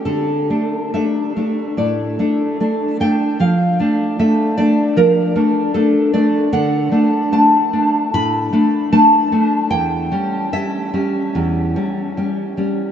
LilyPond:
\new Staff \with { instrumentName = "Nylon-string guitar" } { \time 4/4 \key d \minor \tempo 4 = 74 << { a'4 e''4 d''4. g''8 | f''4 e''8 d''8 bes'4 a'8 d''8 | \key d \major fis''4 a''4 b''4 a''4 | g''4 e''2~ e''8 r8 | } \\ { d8 <a d'>8 <a d'>8 <a d'>8 a,8 <a d'>8 <a d'>8 <a d'>8 | f8 <a d'>8 <a d'>8 <a d'>8 f8 <a d'>8 <a d'>8 <a d'>8 | d8 <a d'>8 <a d'>8 <a d'>8 a,8 <a d'>8 <a d'>8 <a d'>8 | e,8 <g cis'>8 <g cis'>8 <g cis'>8 e,8 <g cis'>8 <g cis'>8 <g cis'>8 | } >> }